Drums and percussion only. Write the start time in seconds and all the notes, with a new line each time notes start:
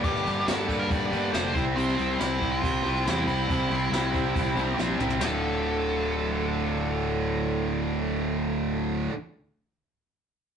0.04 kick, ride
0.16 snare
0.26 ride
0.48 snare, ride
0.69 kick, ride
0.90 kick, ride
1.13 ride
1.34 snare, ride
1.55 kick, ride
1.78 crash
1.89 snare
1.99 ride
2.20 snare, ride
2.42 kick, ride
2.64 kick, ride
2.86 ride
3.07 snare, ride
3.28 ride
3.50 kick, ride
3.71 ride
3.93 snare, ride
4.14 kick, ride
4.36 kick, ride
4.57 ride
4.79 snare
5.00 mid tom
5.10 floor tom
5.21 snare, floor tom, ride bell